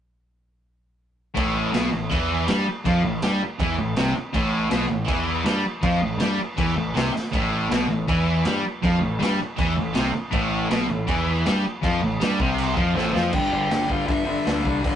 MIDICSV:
0, 0, Header, 1, 7, 480
1, 0, Start_track
1, 0, Key_signature, 0, "minor"
1, 0, Tempo, 373134
1, 1751, Time_signature, 4, 2, 24, 8
1, 10871, Tempo, 375940
1, 19174, End_track
2, 0, Start_track
2, 0, Title_t, "Overdriven electric guitar"
2, 0, Program_c, 0, 29
2, 16622, Note_on_c, 0, 60, 69
2, 16635, Note_on_c, 0, 72, 92
2, 17071, Note_off_c, 0, 60, 0
2, 17111, Note_on_c, 0, 67, 81
2, 17121, Note_on_c, 0, 79, 105
2, 17125, Note_off_c, 0, 72, 0
2, 17556, Note_off_c, 0, 67, 0
2, 17587, Note_on_c, 0, 67, 71
2, 17609, Note_off_c, 0, 79, 0
2, 17622, Note_on_c, 0, 79, 97
2, 17804, Note_on_c, 0, 65, 74
2, 17811, Note_off_c, 0, 67, 0
2, 17852, Note_off_c, 0, 79, 0
2, 17870, Note_on_c, 0, 77, 89
2, 18039, Note_off_c, 0, 65, 0
2, 18048, Note_off_c, 0, 77, 0
2, 18053, Note_on_c, 0, 64, 69
2, 18100, Note_off_c, 0, 64, 0
2, 18100, Note_on_c, 0, 76, 97
2, 18556, Note_on_c, 0, 62, 65
2, 18566, Note_off_c, 0, 76, 0
2, 18605, Note_on_c, 0, 74, 87
2, 19002, Note_off_c, 0, 62, 0
2, 19028, Note_off_c, 0, 74, 0
2, 19042, Note_on_c, 0, 59, 60
2, 19069, Note_on_c, 0, 71, 77
2, 19174, Note_off_c, 0, 59, 0
2, 19174, Note_off_c, 0, 71, 0
2, 19174, End_track
3, 0, Start_track
3, 0, Title_t, "Distorted electric guitar"
3, 0, Program_c, 1, 30
3, 1730, Note_on_c, 1, 45, 105
3, 2213, Note_off_c, 1, 45, 0
3, 2231, Note_on_c, 1, 47, 101
3, 2464, Note_off_c, 1, 47, 0
3, 2480, Note_on_c, 1, 45, 71
3, 2667, Note_off_c, 1, 45, 0
3, 2720, Note_on_c, 1, 52, 103
3, 3188, Note_off_c, 1, 52, 0
3, 3213, Note_on_c, 1, 55, 94
3, 3434, Note_off_c, 1, 55, 0
3, 3667, Note_on_c, 1, 53, 108
3, 3901, Note_off_c, 1, 53, 0
3, 3920, Note_on_c, 1, 45, 73
3, 4107, Note_off_c, 1, 45, 0
3, 4172, Note_on_c, 1, 55, 105
3, 4393, Note_off_c, 1, 55, 0
3, 4647, Note_on_c, 1, 52, 105
3, 4871, Note_off_c, 1, 52, 0
3, 4890, Note_on_c, 1, 45, 76
3, 5071, Note_off_c, 1, 45, 0
3, 5129, Note_on_c, 1, 48, 101
3, 5352, Note_off_c, 1, 48, 0
3, 5580, Note_on_c, 1, 45, 110
3, 6050, Note_off_c, 1, 45, 0
3, 6055, Note_on_c, 1, 47, 101
3, 6281, Note_off_c, 1, 47, 0
3, 6286, Note_on_c, 1, 45, 74
3, 6489, Note_off_c, 1, 45, 0
3, 6531, Note_on_c, 1, 52, 104
3, 7012, Note_off_c, 1, 52, 0
3, 7013, Note_on_c, 1, 55, 94
3, 7254, Note_off_c, 1, 55, 0
3, 7499, Note_on_c, 1, 53, 106
3, 7736, Note_off_c, 1, 53, 0
3, 7757, Note_on_c, 1, 45, 69
3, 7945, Note_off_c, 1, 45, 0
3, 7991, Note_on_c, 1, 55, 103
3, 8223, Note_off_c, 1, 55, 0
3, 8465, Note_on_c, 1, 52, 105
3, 8700, Note_off_c, 1, 52, 0
3, 8713, Note_on_c, 1, 45, 70
3, 8904, Note_off_c, 1, 45, 0
3, 8962, Note_on_c, 1, 48, 91
3, 9189, Note_off_c, 1, 48, 0
3, 9457, Note_on_c, 1, 45, 105
3, 9906, Note_off_c, 1, 45, 0
3, 9911, Note_on_c, 1, 47, 103
3, 10144, Note_off_c, 1, 47, 0
3, 10149, Note_on_c, 1, 45, 72
3, 10343, Note_off_c, 1, 45, 0
3, 10387, Note_on_c, 1, 52, 104
3, 10864, Note_off_c, 1, 52, 0
3, 10897, Note_on_c, 1, 55, 90
3, 11118, Note_off_c, 1, 55, 0
3, 11355, Note_on_c, 1, 53, 111
3, 11582, Note_off_c, 1, 53, 0
3, 11587, Note_on_c, 1, 45, 67
3, 11781, Note_off_c, 1, 45, 0
3, 11816, Note_on_c, 1, 55, 103
3, 12056, Note_off_c, 1, 55, 0
3, 12324, Note_on_c, 1, 52, 102
3, 12549, Note_off_c, 1, 52, 0
3, 12561, Note_on_c, 1, 45, 75
3, 12747, Note_off_c, 1, 45, 0
3, 12778, Note_on_c, 1, 48, 95
3, 13010, Note_off_c, 1, 48, 0
3, 13243, Note_on_c, 1, 45, 104
3, 13728, Note_off_c, 1, 45, 0
3, 13744, Note_on_c, 1, 47, 99
3, 13968, Note_off_c, 1, 47, 0
3, 13973, Note_on_c, 1, 45, 73
3, 14172, Note_off_c, 1, 45, 0
3, 14219, Note_on_c, 1, 52, 98
3, 14695, Note_off_c, 1, 52, 0
3, 14705, Note_on_c, 1, 55, 95
3, 14938, Note_off_c, 1, 55, 0
3, 15170, Note_on_c, 1, 53, 105
3, 15411, Note_off_c, 1, 53, 0
3, 15433, Note_on_c, 1, 45, 72
3, 15621, Note_off_c, 1, 45, 0
3, 15656, Note_on_c, 1, 55, 97
3, 15894, Note_off_c, 1, 55, 0
3, 15912, Note_on_c, 1, 48, 102
3, 16376, Note_off_c, 1, 48, 0
3, 16381, Note_on_c, 1, 53, 108
3, 16616, Note_off_c, 1, 53, 0
3, 16622, Note_on_c, 1, 45, 96
3, 16849, Note_off_c, 1, 45, 0
3, 16855, Note_on_c, 1, 53, 98
3, 17086, Note_on_c, 1, 43, 91
3, 17089, Note_off_c, 1, 53, 0
3, 17094, Note_on_c, 1, 50, 86
3, 17098, Note_on_c, 1, 55, 102
3, 17320, Note_off_c, 1, 43, 0
3, 17324, Note_off_c, 1, 50, 0
3, 17325, Note_on_c, 1, 43, 78
3, 17339, Note_on_c, 1, 50, 74
3, 17346, Note_off_c, 1, 55, 0
3, 17351, Note_on_c, 1, 55, 85
3, 17563, Note_off_c, 1, 50, 0
3, 17574, Note_off_c, 1, 43, 0
3, 17578, Note_off_c, 1, 55, 0
3, 17578, Note_on_c, 1, 50, 76
3, 17579, Note_on_c, 1, 43, 77
3, 17584, Note_on_c, 1, 55, 88
3, 17792, Note_off_c, 1, 50, 0
3, 17795, Note_off_c, 1, 43, 0
3, 17799, Note_off_c, 1, 55, 0
3, 17807, Note_on_c, 1, 50, 88
3, 17810, Note_on_c, 1, 43, 86
3, 17815, Note_on_c, 1, 55, 92
3, 18018, Note_off_c, 1, 43, 0
3, 18027, Note_off_c, 1, 50, 0
3, 18034, Note_on_c, 1, 43, 92
3, 18037, Note_off_c, 1, 55, 0
3, 18043, Note_on_c, 1, 50, 96
3, 18052, Note_on_c, 1, 55, 99
3, 18256, Note_off_c, 1, 43, 0
3, 18264, Note_off_c, 1, 50, 0
3, 18271, Note_on_c, 1, 43, 77
3, 18272, Note_off_c, 1, 55, 0
3, 18279, Note_on_c, 1, 50, 86
3, 18287, Note_on_c, 1, 55, 88
3, 18515, Note_off_c, 1, 43, 0
3, 18527, Note_off_c, 1, 55, 0
3, 18529, Note_off_c, 1, 50, 0
3, 18531, Note_on_c, 1, 43, 81
3, 18543, Note_on_c, 1, 55, 92
3, 18545, Note_on_c, 1, 50, 84
3, 18743, Note_off_c, 1, 43, 0
3, 18751, Note_off_c, 1, 50, 0
3, 18759, Note_off_c, 1, 55, 0
3, 18759, Note_on_c, 1, 43, 78
3, 18766, Note_on_c, 1, 50, 75
3, 18774, Note_on_c, 1, 55, 85
3, 18984, Note_off_c, 1, 43, 0
3, 18989, Note_off_c, 1, 50, 0
3, 18996, Note_off_c, 1, 55, 0
3, 18999, Note_on_c, 1, 43, 87
3, 19004, Note_on_c, 1, 50, 85
3, 19011, Note_on_c, 1, 55, 100
3, 19174, Note_off_c, 1, 43, 0
3, 19174, Note_off_c, 1, 50, 0
3, 19174, Note_off_c, 1, 55, 0
3, 19174, End_track
4, 0, Start_track
4, 0, Title_t, "Picked electric bass"
4, 0, Program_c, 2, 34
4, 1759, Note_on_c, 2, 33, 85
4, 2201, Note_off_c, 2, 33, 0
4, 2230, Note_on_c, 2, 35, 91
4, 2454, Note_off_c, 2, 35, 0
4, 2476, Note_on_c, 2, 33, 83
4, 2697, Note_off_c, 2, 33, 0
4, 2727, Note_on_c, 2, 40, 92
4, 3166, Note_off_c, 2, 40, 0
4, 3181, Note_on_c, 2, 43, 88
4, 3408, Note_off_c, 2, 43, 0
4, 3683, Note_on_c, 2, 41, 94
4, 3892, Note_off_c, 2, 41, 0
4, 3900, Note_on_c, 2, 33, 83
4, 4128, Note_off_c, 2, 33, 0
4, 4146, Note_on_c, 2, 43, 91
4, 4371, Note_off_c, 2, 43, 0
4, 4630, Note_on_c, 2, 40, 93
4, 4853, Note_off_c, 2, 40, 0
4, 4866, Note_on_c, 2, 33, 85
4, 5091, Note_off_c, 2, 33, 0
4, 5103, Note_on_c, 2, 36, 92
4, 5329, Note_off_c, 2, 36, 0
4, 5594, Note_on_c, 2, 33, 91
4, 6038, Note_off_c, 2, 33, 0
4, 6053, Note_on_c, 2, 35, 92
4, 6283, Note_off_c, 2, 35, 0
4, 6307, Note_on_c, 2, 33, 79
4, 6531, Note_off_c, 2, 33, 0
4, 6542, Note_on_c, 2, 40, 90
4, 6991, Note_off_c, 2, 40, 0
4, 7003, Note_on_c, 2, 43, 96
4, 7238, Note_off_c, 2, 43, 0
4, 7498, Note_on_c, 2, 41, 91
4, 7719, Note_off_c, 2, 41, 0
4, 7727, Note_on_c, 2, 33, 79
4, 7937, Note_off_c, 2, 33, 0
4, 7944, Note_on_c, 2, 43, 83
4, 8188, Note_off_c, 2, 43, 0
4, 8466, Note_on_c, 2, 40, 88
4, 8691, Note_off_c, 2, 40, 0
4, 8703, Note_on_c, 2, 33, 77
4, 8929, Note_off_c, 2, 33, 0
4, 8944, Note_on_c, 2, 36, 90
4, 9160, Note_off_c, 2, 36, 0
4, 9439, Note_on_c, 2, 33, 85
4, 9882, Note_off_c, 2, 33, 0
4, 9907, Note_on_c, 2, 35, 91
4, 10133, Note_off_c, 2, 35, 0
4, 10145, Note_on_c, 2, 33, 78
4, 10372, Note_off_c, 2, 33, 0
4, 10406, Note_on_c, 2, 40, 95
4, 10848, Note_off_c, 2, 40, 0
4, 10875, Note_on_c, 2, 43, 97
4, 11097, Note_off_c, 2, 43, 0
4, 11370, Note_on_c, 2, 41, 93
4, 11584, Note_off_c, 2, 41, 0
4, 11616, Note_on_c, 2, 33, 85
4, 11827, Note_off_c, 2, 33, 0
4, 11854, Note_on_c, 2, 43, 90
4, 12066, Note_off_c, 2, 43, 0
4, 12323, Note_on_c, 2, 40, 96
4, 12539, Note_off_c, 2, 40, 0
4, 12578, Note_on_c, 2, 33, 80
4, 12787, Note_off_c, 2, 33, 0
4, 12798, Note_on_c, 2, 36, 98
4, 13016, Note_off_c, 2, 36, 0
4, 13279, Note_on_c, 2, 33, 94
4, 13719, Note_off_c, 2, 33, 0
4, 13751, Note_on_c, 2, 35, 87
4, 13972, Note_off_c, 2, 35, 0
4, 14000, Note_on_c, 2, 33, 81
4, 14216, Note_off_c, 2, 33, 0
4, 14229, Note_on_c, 2, 40, 96
4, 14674, Note_off_c, 2, 40, 0
4, 14730, Note_on_c, 2, 43, 93
4, 14942, Note_off_c, 2, 43, 0
4, 15193, Note_on_c, 2, 41, 88
4, 15413, Note_off_c, 2, 41, 0
4, 15434, Note_on_c, 2, 33, 79
4, 15653, Note_off_c, 2, 33, 0
4, 15691, Note_on_c, 2, 43, 88
4, 15903, Note_off_c, 2, 43, 0
4, 15911, Note_on_c, 2, 36, 89
4, 16355, Note_off_c, 2, 36, 0
4, 16388, Note_on_c, 2, 41, 92
4, 16603, Note_off_c, 2, 41, 0
4, 16610, Note_on_c, 2, 33, 90
4, 16841, Note_off_c, 2, 33, 0
4, 16870, Note_on_c, 2, 41, 89
4, 17092, Note_off_c, 2, 41, 0
4, 17102, Note_on_c, 2, 31, 81
4, 17296, Note_off_c, 2, 31, 0
4, 17342, Note_on_c, 2, 31, 85
4, 17536, Note_off_c, 2, 31, 0
4, 17585, Note_on_c, 2, 31, 80
4, 17778, Note_off_c, 2, 31, 0
4, 17833, Note_on_c, 2, 31, 87
4, 18023, Note_off_c, 2, 31, 0
4, 18068, Note_on_c, 2, 31, 81
4, 18452, Note_off_c, 2, 31, 0
4, 18554, Note_on_c, 2, 38, 83
4, 18745, Note_off_c, 2, 38, 0
4, 18789, Note_on_c, 2, 36, 86
4, 18982, Note_off_c, 2, 36, 0
4, 19040, Note_on_c, 2, 31, 87
4, 19174, Note_off_c, 2, 31, 0
4, 19174, End_track
5, 0, Start_track
5, 0, Title_t, "Muted distorted electric guitar strokes"
5, 4420, Note_on_c, 9, 29, 56
5, 4548, Note_off_c, 9, 29, 0
5, 5362, Note_on_c, 9, 29, 59
5, 5491, Note_off_c, 9, 29, 0
5, 8240, Note_on_c, 9, 29, 56
5, 8369, Note_off_c, 9, 29, 0
5, 9207, Note_on_c, 9, 29, 55
5, 9336, Note_off_c, 9, 29, 0
5, 12098, Note_on_c, 9, 29, 55
5, 12226, Note_off_c, 9, 29, 0
5, 13015, Note_on_c, 9, 29, 58
5, 13142, Note_off_c, 9, 29, 0
5, 19174, End_track
6, 0, Start_track
6, 0, Title_t, "Muted picked electric bass strokes"
6, 4408, Note_on_c, 9, 29, 43
6, 4537, Note_off_c, 9, 29, 0
6, 8209, Note_on_c, 9, 29, 39
6, 8337, Note_off_c, 9, 29, 0
6, 12098, Note_on_c, 9, 29, 39
6, 12226, Note_off_c, 9, 29, 0
6, 13024, Note_on_c, 9, 29, 42
6, 13151, Note_off_c, 9, 29, 0
6, 19174, End_track
7, 0, Start_track
7, 0, Title_t, "Drums"
7, 1760, Note_on_c, 9, 49, 64
7, 1763, Note_on_c, 9, 36, 108
7, 1888, Note_off_c, 9, 49, 0
7, 1891, Note_off_c, 9, 36, 0
7, 2238, Note_on_c, 9, 49, 59
7, 2249, Note_on_c, 9, 38, 109
7, 2367, Note_off_c, 9, 49, 0
7, 2377, Note_off_c, 9, 38, 0
7, 2720, Note_on_c, 9, 36, 113
7, 2727, Note_on_c, 9, 49, 66
7, 2849, Note_off_c, 9, 36, 0
7, 2855, Note_off_c, 9, 49, 0
7, 3189, Note_on_c, 9, 49, 61
7, 3199, Note_on_c, 9, 38, 108
7, 3317, Note_off_c, 9, 49, 0
7, 3328, Note_off_c, 9, 38, 0
7, 3671, Note_on_c, 9, 36, 103
7, 3675, Note_on_c, 9, 49, 62
7, 3800, Note_off_c, 9, 36, 0
7, 3804, Note_off_c, 9, 49, 0
7, 4144, Note_on_c, 9, 49, 58
7, 4154, Note_on_c, 9, 38, 110
7, 4273, Note_off_c, 9, 49, 0
7, 4283, Note_off_c, 9, 38, 0
7, 4627, Note_on_c, 9, 36, 102
7, 4630, Note_on_c, 9, 49, 61
7, 4755, Note_off_c, 9, 36, 0
7, 4759, Note_off_c, 9, 49, 0
7, 5098, Note_on_c, 9, 49, 53
7, 5108, Note_on_c, 9, 38, 114
7, 5227, Note_off_c, 9, 49, 0
7, 5237, Note_off_c, 9, 38, 0
7, 5586, Note_on_c, 9, 36, 113
7, 5589, Note_on_c, 9, 49, 62
7, 5715, Note_off_c, 9, 36, 0
7, 5718, Note_off_c, 9, 49, 0
7, 6055, Note_on_c, 9, 49, 59
7, 6066, Note_on_c, 9, 38, 109
7, 6184, Note_off_c, 9, 49, 0
7, 6194, Note_off_c, 9, 38, 0
7, 6537, Note_on_c, 9, 49, 65
7, 6538, Note_on_c, 9, 36, 101
7, 6666, Note_off_c, 9, 49, 0
7, 6667, Note_off_c, 9, 36, 0
7, 7019, Note_on_c, 9, 49, 60
7, 7029, Note_on_c, 9, 38, 98
7, 7148, Note_off_c, 9, 49, 0
7, 7158, Note_off_c, 9, 38, 0
7, 7497, Note_on_c, 9, 36, 111
7, 7497, Note_on_c, 9, 49, 66
7, 7626, Note_off_c, 9, 36, 0
7, 7626, Note_off_c, 9, 49, 0
7, 7971, Note_on_c, 9, 49, 65
7, 7981, Note_on_c, 9, 38, 110
7, 8100, Note_off_c, 9, 49, 0
7, 8110, Note_off_c, 9, 38, 0
7, 8463, Note_on_c, 9, 36, 107
7, 8467, Note_on_c, 9, 49, 61
7, 8592, Note_off_c, 9, 36, 0
7, 8596, Note_off_c, 9, 49, 0
7, 8961, Note_on_c, 9, 49, 53
7, 8971, Note_on_c, 9, 38, 105
7, 9090, Note_off_c, 9, 49, 0
7, 9100, Note_off_c, 9, 38, 0
7, 9210, Note_on_c, 9, 38, 64
7, 9339, Note_off_c, 9, 38, 0
7, 9436, Note_on_c, 9, 36, 113
7, 9439, Note_on_c, 9, 49, 60
7, 9564, Note_off_c, 9, 36, 0
7, 9567, Note_off_c, 9, 49, 0
7, 9923, Note_on_c, 9, 49, 61
7, 9933, Note_on_c, 9, 38, 111
7, 10051, Note_off_c, 9, 49, 0
7, 10061, Note_off_c, 9, 38, 0
7, 10399, Note_on_c, 9, 36, 111
7, 10407, Note_on_c, 9, 49, 59
7, 10528, Note_off_c, 9, 36, 0
7, 10536, Note_off_c, 9, 49, 0
7, 10869, Note_on_c, 9, 49, 59
7, 10879, Note_on_c, 9, 38, 106
7, 10996, Note_off_c, 9, 49, 0
7, 11006, Note_off_c, 9, 38, 0
7, 11363, Note_on_c, 9, 36, 111
7, 11375, Note_on_c, 9, 49, 62
7, 11491, Note_off_c, 9, 36, 0
7, 11502, Note_off_c, 9, 49, 0
7, 11857, Note_on_c, 9, 49, 60
7, 11867, Note_on_c, 9, 38, 112
7, 11984, Note_off_c, 9, 49, 0
7, 11994, Note_off_c, 9, 38, 0
7, 12318, Note_on_c, 9, 36, 110
7, 12319, Note_on_c, 9, 49, 63
7, 12446, Note_off_c, 9, 36, 0
7, 12447, Note_off_c, 9, 49, 0
7, 12781, Note_on_c, 9, 49, 53
7, 12791, Note_on_c, 9, 38, 98
7, 12908, Note_off_c, 9, 49, 0
7, 12919, Note_off_c, 9, 38, 0
7, 13267, Note_on_c, 9, 36, 114
7, 13267, Note_on_c, 9, 49, 59
7, 13394, Note_off_c, 9, 49, 0
7, 13395, Note_off_c, 9, 36, 0
7, 13752, Note_on_c, 9, 49, 55
7, 13762, Note_on_c, 9, 38, 106
7, 13879, Note_off_c, 9, 49, 0
7, 13890, Note_off_c, 9, 38, 0
7, 14228, Note_on_c, 9, 36, 101
7, 14234, Note_on_c, 9, 49, 61
7, 14356, Note_off_c, 9, 36, 0
7, 14361, Note_off_c, 9, 49, 0
7, 14713, Note_on_c, 9, 49, 56
7, 14723, Note_on_c, 9, 38, 106
7, 14840, Note_off_c, 9, 49, 0
7, 14851, Note_off_c, 9, 38, 0
7, 15189, Note_on_c, 9, 36, 111
7, 15197, Note_on_c, 9, 49, 66
7, 15317, Note_off_c, 9, 36, 0
7, 15324, Note_off_c, 9, 49, 0
7, 15674, Note_on_c, 9, 49, 61
7, 15685, Note_on_c, 9, 38, 119
7, 15802, Note_off_c, 9, 49, 0
7, 15812, Note_off_c, 9, 38, 0
7, 15911, Note_on_c, 9, 36, 106
7, 16038, Note_off_c, 9, 36, 0
7, 16146, Note_on_c, 9, 49, 66
7, 16274, Note_off_c, 9, 49, 0
7, 16387, Note_on_c, 9, 36, 112
7, 16514, Note_off_c, 9, 36, 0
7, 16650, Note_on_c, 9, 38, 64
7, 16778, Note_off_c, 9, 38, 0
7, 16888, Note_on_c, 9, 38, 87
7, 17016, Note_off_c, 9, 38, 0
7, 17096, Note_on_c, 9, 57, 103
7, 17104, Note_on_c, 9, 36, 112
7, 17224, Note_off_c, 9, 57, 0
7, 17232, Note_off_c, 9, 36, 0
7, 17583, Note_on_c, 9, 46, 53
7, 17593, Note_on_c, 9, 38, 104
7, 17711, Note_off_c, 9, 46, 0
7, 17721, Note_off_c, 9, 38, 0
7, 17825, Note_on_c, 9, 36, 83
7, 17952, Note_off_c, 9, 36, 0
7, 18061, Note_on_c, 9, 46, 56
7, 18065, Note_on_c, 9, 36, 105
7, 18189, Note_off_c, 9, 46, 0
7, 18192, Note_off_c, 9, 36, 0
7, 18549, Note_on_c, 9, 46, 56
7, 18560, Note_on_c, 9, 38, 100
7, 18677, Note_off_c, 9, 46, 0
7, 18687, Note_off_c, 9, 38, 0
7, 18792, Note_on_c, 9, 36, 87
7, 18920, Note_off_c, 9, 36, 0
7, 19033, Note_on_c, 9, 36, 113
7, 19035, Note_on_c, 9, 46, 60
7, 19161, Note_off_c, 9, 36, 0
7, 19163, Note_off_c, 9, 46, 0
7, 19174, End_track
0, 0, End_of_file